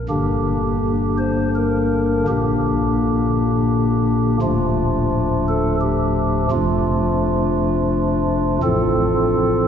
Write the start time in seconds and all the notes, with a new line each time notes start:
0.09 G1 G2 D3 A#3 D4 G4
1.18 C5
1.55 A#4
2.27 A#1 A#2 D3 A#3 D4 G4
4.42 D1 D2 F3 A3 D4 F4
5.48 A4
5.81 G4
6.51 F1 F2 F3 A3 D4 F4
8.63 A1 A2 F3 C4 F4 A4